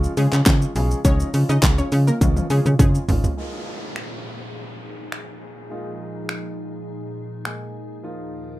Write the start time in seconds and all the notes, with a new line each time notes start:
0.04 shaker
0.17 C#3 F3 G#3 C#4 F4 G#4, open hi-hat, shaker
0.33 C#3, clap, shaker
0.46 C#3 F3 G#3 C#4 F4, kick, snare, clap, closed hi-hat, shaker
0.62 shaker
0.75 B1 C#3 F3 G#3 C#4 G#4, open hi-hat, shaker
0.91 shaker
1.04 C#2 C#3 F3 G#3 C#4 D#4 C#5, kick, closed hi-hat, shaker
1.20 shaker
1.34 C#3 F3 G#3 C#4 F4, open hi-hat, shaker
1.49 C#3 D#4 D#5, shaker
1.63 C#2 C#3 F3 G#3 C#4 F4, kick, snare, clap, closed hi-hat, shaker
1.78 C#4 C#5, shaker
1.92 C#3 F3 G#3 C#4 F4, open hi-hat, shaker
2.07 A#3 A#4, shaker
2.21 C#2 C#3 F3 G#3 C#4 F4, kick, closed hi-hat, high tom, shaker
2.37 high tom, shaker
2.50 C#3 F3 G#3 C#4 F4 G#4, open hi-hat, shaker
2.66 C#3, mid tom, shaker
2.79 C#3 F3 G#3 C#4 F4 G#4, kick, closed hi-hat, mid tom, shaker
2.95 shaker
3.08 G#1 C#3 F3 G#3 C#4 F4, floor tom, open hi-hat, shaker
3.24 floor tom, shaker
3.37 A#2 F3 G#3 A#3 D#4 F4 G#4, downlifter
3.96 finger snap
5.12 finger snap
5.70 G#3 A#3 D#4 F4
6.29 finger snap
7.45 G#3 A#3 D#4 G#4, finger snap
8.03 D#2 D#3 F3 A#3 D#4 F4 A#4